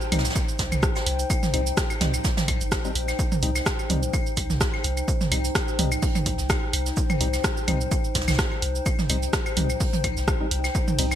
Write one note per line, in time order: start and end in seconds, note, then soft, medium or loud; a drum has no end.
0.00 11.15 D#4 medium
0.00 11.15 C5 medium
0.00 11.15 G5 medium
0.00 shaker soft
0.12 0.30 C2 medium
0.12 0.23 G3 medium
0.12 0.23 C4 medium
0.12 0.23 D#4 medium
0.12 mid tom medium
0.12 open hi-hat medium
0.12 claves medium
0.12 shaker medium
0.18 snare medium
0.18 shaker medium
0.24 snare medium
0.24 shaker medium
0.24 shaker soft
0.30 snare loud
0.30 shaker medium
0.36 kick loud
0.36 claves soft
0.36 shaker medium
0.48 shaker soft
0.59 0.69 C2 loud
0.59 kick medium
0.59 snare loud
0.59 open hi-hat medium
0.59 shaker medium
0.72 0.89 C2 medium
0.72 mid tom medium
0.72 claves medium
0.72 shaker soft
0.82 kick loud
0.82 cross-stick medium
0.82 shaker medium
0.96 snare loud
0.96 claves soft
0.96 shaker medium
1.06 1.24 C2 loud
1.06 open hi-hat medium
1.19 shaker medium
1.19 shaker soft
1.30 kick loud
1.30 claves medium
1.30 shaker medium
1.43 snare medium
1.43 mid tom loud
1.43 shaker soft
1.54 1.72 C2 loud
1.54 1.61 G3 medium
1.54 1.61 C4 medium
1.54 1.61 D#4 medium
1.54 open hi-hat medium
1.54 claves soft
1.54 shaker medium
1.66 closed hi-hat soft
1.66 shaker soft
1.77 kick loud
1.77 cross-stick medium
1.77 snare loud
1.77 open hi-hat soft
1.77 shaker loud
1.77 shaker medium
1.90 claves medium
1.90 shaker soft
2.01 2.19 C2 medium
2.01 2.12 G3 medium
2.01 2.12 C4 medium
2.01 2.12 D#4 medium
2.01 snare loud
2.01 mid tom medium
2.01 open hi-hat medium
2.01 shaker medium
2.14 claves soft
2.14 shaker soft
2.24 kick loud
2.24 snare loud
2.24 shaker medium
2.37 snare loud
2.37 mid tom medium
2.37 shaker soft
2.37 shaker medium
2.48 2.58 A#1 loud
2.48 kick medium
2.48 open hi-hat medium
2.48 claves medium
2.60 2.78 G1 loud
2.60 shaker medium
2.60 shaker soft
2.72 kick loud
2.72 cross-stick medium
2.72 snare loud
2.72 open hi-hat soft
2.72 claves soft
2.72 shaker loud
2.72 shaker medium
2.85 2.91 G3 medium
2.85 2.91 C4 medium
2.85 2.91 D#4 medium
2.85 shaker soft
2.95 3.13 A#1 loud
2.95 open hi-hat medium
2.95 shaker medium
3.08 snare medium
3.08 claves medium
3.08 shaker soft
3.19 kick loud
3.19 claves soft
3.19 shaker medium
3.32 mid tom loud
3.32 shaker soft
3.42 3.61 C2 loud
3.42 3.50 G3 medium
3.42 3.50 C4 medium
3.42 3.50 D#4 medium
3.42 open hi-hat medium
3.42 shaker medium
3.56 snare medium
3.56 claves medium
3.56 shaker soft
3.66 kick loud
3.66 cross-stick loud
3.66 snare loud
3.66 open hi-hat soft
3.66 shaker medium
3.79 claves soft
3.79 shaker soft
3.90 4.08 C2 medium
3.90 4.01 G3 medium
3.90 4.01 C4 medium
3.90 4.01 D#4 medium
3.90 mid tom loud
3.90 open hi-hat medium
3.90 shaker medium
4.03 shaker soft
4.13 kick loud
4.13 claves medium
4.13 shaker medium
4.26 shaker soft
4.36 4.47 C2 loud
4.36 kick medium
4.36 open hi-hat medium
4.36 claves soft
4.36 shaker medium
4.50 4.67 C2 medium
4.50 snare soft
4.50 mid tom medium
4.50 shaker soft
4.61 kick loud
4.61 cross-stick medium
4.61 snare loud
4.61 shaker medium
4.74 snare soft
4.74 claves medium
4.84 5.02 C2 loud
4.84 open hi-hat medium
4.84 shaker medium
4.97 claves soft
4.97 shaker soft
5.08 kick loud
5.08 shaker medium
5.21 snare medium
5.21 mid tom loud
5.21 shaker soft
5.32 5.50 C2 loud
5.32 5.39 G3 medium
5.32 5.39 C4 medium
5.32 5.39 D#4 medium
5.32 open hi-hat loud
5.32 claves medium
5.32 shaker medium
5.44 closed hi-hat soft
5.44 shaker soft
5.55 kick loud
5.55 cross-stick loud
5.55 snare loud
5.55 open hi-hat soft
5.55 claves soft
5.55 shaker medium
5.68 shaker soft
5.79 5.97 C2 medium
5.79 5.90 G3 medium
5.79 5.90 C4 medium
5.79 5.90 D#4 medium
5.79 mid tom loud
5.79 open hi-hat loud
5.79 shaker medium
5.92 claves medium
5.92 shaker soft
6.02 kick loud
6.02 open hi-hat medium
6.02 shaker medium
6.15 closed hi-hat soft
6.15 mid tom loud
6.15 claves soft
6.15 shaker soft
6.26 6.36 C2 loud
6.26 kick medium
6.26 open hi-hat loud
6.26 shaker medium
6.38 6.56 C2 medium
6.38 snare soft
6.38 shaker soft
6.49 kick loud
6.49 cross-stick medium
6.49 snare loud
6.49 claves medium
6.49 shaker medium
6.73 6.91 C2 loud
6.73 open hi-hat loud
6.73 claves soft
6.73 shaker medium
6.86 snare soft
6.86 shaker soft
6.96 kick loud
6.96 shaker medium
7.10 mid tom loud
7.10 claves medium
7.10 shaker soft
7.21 7.39 C2 loud
7.21 7.28 G3 medium
7.21 7.28 C4 medium
7.21 7.28 D#4 medium
7.21 open hi-hat loud
7.21 shaker medium
7.33 snare medium
7.33 claves soft
7.33 shaker soft
7.44 kick loud
7.44 cross-stick loud
7.44 snare loud
7.44 open hi-hat soft
7.44 shaker medium
7.57 shaker soft
7.68 7.86 C2 medium
7.68 7.79 G3 medium
7.68 7.79 C4 medium
7.68 7.79 D#4 medium
7.68 mid tom loud
7.68 open hi-hat loud
7.68 claves medium
7.68 shaker medium
7.81 shaker soft
7.91 kick loud
7.91 claves soft
7.91 shaker medium
8.04 shaker soft
8.15 8.25 C2 loud
8.15 kick medium
8.15 snare medium
8.15 open hi-hat loud
8.15 shaker medium
8.21 snare medium
8.21 shaker medium
8.28 8.45 C2 medium
8.28 snare medium
8.28 mid tom medium
8.28 claves medium
8.28 shaker soft
8.28 shaker medium
8.33 snare medium
8.33 shaker medium
8.39 kick loud
8.39 cross-stick loud
8.39 snare loud
8.39 shaker medium
8.51 snare soft
8.51 claves soft
8.62 8.80 C2 loud
8.62 open hi-hat loud
8.62 shaker medium
8.75 shaker soft
8.86 kick loud
8.86 claves medium
8.86 shaker medium
8.99 snare medium
8.99 mid tom medium
8.99 shaker soft
9.09 9.28 C2 loud
9.09 9.17 G3 medium
9.09 9.17 C4 medium
9.09 9.17 D#4 medium
9.09 open hi-hat loud
9.09 claves soft
9.09 shaker medium
9.22 closed hi-hat soft
9.22 shaker soft
9.33 kick loud
9.33 cross-stick loud
9.33 snare loud
9.33 open hi-hat soft
9.33 shaker medium
9.46 claves medium
9.46 shaker soft
9.57 9.75 C2 medium
9.57 9.68 G3 medium
9.57 9.68 C4 medium
9.57 9.68 D#4 medium
9.57 mid tom medium
9.57 open hi-hat medium
9.57 shaker medium
9.70 claves soft
9.70 shaker soft
9.80 kick loud
9.80 open hi-hat medium
9.80 shaker medium
9.93 closed hi-hat soft
9.93 mid tom medium
9.93 shaker soft
10.04 10.14 C2 loud
10.04 kick medium
10.04 open hi-hat loud
10.04 claves medium
10.04 shaker medium
10.17 10.34 C2 medium
10.17 snare soft
10.17 shaker soft
10.28 kick loud
10.28 cross-stick medium
10.28 open hi-hat soft
10.28 claves soft
10.28 shaker medium
10.41 10.47 G3 medium
10.41 10.47 C4 medium
10.41 10.47 D#4 medium
10.51 10.69 C2 medium
10.51 open hi-hat loud
10.51 shaker medium
10.64 snare medium
10.64 claves medium
10.64 shaker soft
10.75 kick loud
10.75 claves soft
10.75 shaker medium
10.88 mid tom medium
10.88 shaker soft
10.99 11.15 C2 loud
10.99 11.06 G3 medium
10.99 11.06 C4 medium
10.99 11.06 D#4 medium
10.99 open hi-hat medium
10.99 ride medium
10.99 shaker medium
11.11 snare medium
11.11 claves medium
11.11 shaker soft